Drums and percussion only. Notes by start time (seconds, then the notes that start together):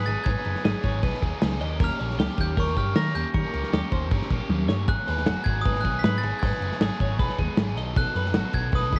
0.07 crash
0.25 kick, crash
0.45 crash
0.55 snare
0.65 snare, crash
0.84 kick, crash
1.03 kick, crash
1.14 snare
1.22 kick, crash
1.42 snare, crash
1.61 crash
1.80 kick, crash
2.00 crash
2.10 snare
2.19 snare, crash
2.38 kick, crash
2.57 kick, crash
2.67 snare
2.77 kick, crash
2.95 snare, crash
3.15 crash
3.34 kick, crash
3.54 crash
3.63 snare
3.73 snare, crash
3.92 kick, crash
4.11 kick, crash
4.22 snare
4.31 kick, crash
4.50 high tom
4.69 snare
4.88 kick, splash, crash
5.08 crash
5.18 snare
5.26 snare, crash
5.46 kick, crash
5.65 kick, crash
5.75 snare
5.85 kick, crash
6.04 snare, crash
6.23 crash
6.42 kick, crash
6.62 crash
6.72 snare
6.81 snare, crash
7.00 kick, crash
7.19 kick, crash
7.29 snare
7.39 kick, crash
7.57 snare, crash
7.77 crash
7.96 kick, crash
8.16 crash
8.26 snare
8.34 snare, crash
8.53 kick, crash
8.72 kick, crash
8.82 snare
8.93 kick, crash